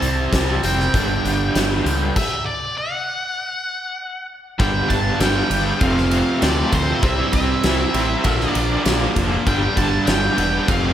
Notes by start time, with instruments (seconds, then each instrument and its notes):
Already playing: overdriven electric guitar C3 G3 C4 E4, lead electric guitar A5
0.02 fingered electric bass C2, closed hi-hat
0.33 fingered electric bass C2, kick, snare, closed hi-hat
0.63 fingered electric bass F1, overdriven electric guitar C3 G3 C4, lead electric guitar G5, closed hi-hat
0.80 snare
0.93 fingered electric bass G1, overdriven electric guitar G2 D3 G3 B3 D4, kick, closed hi-hat
1.25 fingered electric bass G1, closed hi-hat
1.55 fingered electric bass G1, snare, closed hi-hat
1.85 fingered electric bass C#2, overdriven electric guitar G2 D3 G3, closed hi-hat
2.16 lead electric guitar E5, kick, crash
2.46 lead electric guitar D5
2.78 lead electric guitar F#5
4.59 fingered electric bass G1, overdriven electric guitar G2 D3 G3 B3 D4, string machine B3 D4 G4 D5, lead electric guitar G5, kick, ride
4.89 fingered electric bass G1, lead electric guitar A5, kick, ride
5.20 fingered electric bass G1, overdriven electric guitar G2 D3 G3 B3 D4, lead electric guitar G5, snare, ride
5.50 fingered electric bass G1, overdriven electric guitar G2 D3 G3 B3 D4, ride
5.80 fingered electric bass F1, overdriven electric guitar F2 C3 F3 A3 C4, string machine A3 C4 F4 C5, lead electric guitar F5, kick, ride
5.98 snare
6.11 ride
6.42 fingered electric bass D2, overdriven electric guitar F2 C3 F3 A3 C4, lead electric guitar D5, snare, ride
6.72 fingered electric bass D2, overdriven electric guitar F2 C3 F3 A3 C4, lead electric guitar C5, kick, ride
7.02 fingered electric bass C2, overdriven electric guitar C3 G3 C4 E4, string machine G3 C4 E4 C5, lead electric guitar E5, kick, ride
7.33 fingered electric bass C2, lead electric guitar E5, kick, ride
7.63 fingered electric bass C2, overdriven electric guitar C3 G3 C4 E4, snare, ride
7.94 fingered electric bass A1, overdriven electric guitar C3 G3 C4 E4, ride
8.24 fingered electric bass A#1, overdriven electric guitar A#2 D3 F3 A#3 D4, string machine A#3 D4 F4 D5, kick, ride
8.41 snare
8.50 lead electric guitar D5
8.55 fingered electric bass A#1, ride
8.86 fingered electric bass A#1, overdriven electric guitar A#2 D3 F3 A#3 D4, snare, ride
9.16 fingered electric bass F1, overdriven electric guitar A#2 D3 F3 A#3 D4, kick, ride
9.46 fingered electric bass G1, overdriven electric guitar G2 D3 G3 B3 D4, string machine B3 D4 G4 D5, lead electric guitar G5, kick, ride
9.77 fingered electric bass G1, lead electric guitar A5, kick, ride
10.07 fingered electric bass G1, overdriven electric guitar G2 D3 G3 B3 D4, lead electric guitar G5, snare, ride
10.37 fingered electric bass E1, overdriven electric guitar G2 D3 G3 B3 D4, ride
10.67 fingered electric bass F1, overdriven electric guitar F2 C3 F3 A3 C4, string machine A3 C4 F4 C5, lead electric guitar F5, kick, ride